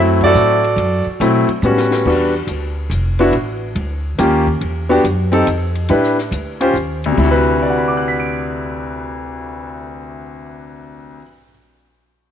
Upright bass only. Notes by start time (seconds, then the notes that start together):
Already playing: F#2
0.34 A2
0.76 F#2
1.06 muted upright bass stroke
1.20 B2
1.48 muted upright bass stroke
1.62 A2
2.06 E2
2.47 D2
2.90 F1
3.32 A1
3.75 D2
4.19 D#2
4.61 E2
5.04 F#2
5.47 F2
5.90 A2
6.31 D2
6.74 D#2
7.17 D2